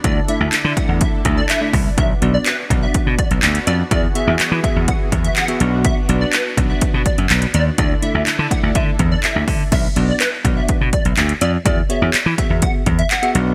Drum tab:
CC |----------------|----------------|----------------|----------------|
HH |x-x-x-x-x-x-x-o-|x-x-x-x-x-xxxxx-|x-x-x-x-x-xxxxx-|x-x-x-x-x-xxxxx-|
CP |----x-------x---|----x-------x---|----x-------x---|----x-------x---|
BD |o-----o-o-o---o-|o-----o-o-o-----|o-----o-o-o-----|o-----o-o-o-----|

CC |----------------|x---------------|----------------|
HH |x-x-x-x-x-x-x-o-|x-x-x-x-x-xxxxx-|x-x-x-x-x-xxxxx-|
CP |----x-------x---|----x-------x---|----x-------x---|
BD |o-----o-o-o---o-|o-----o-o-o-----|o-----o-o-o-----|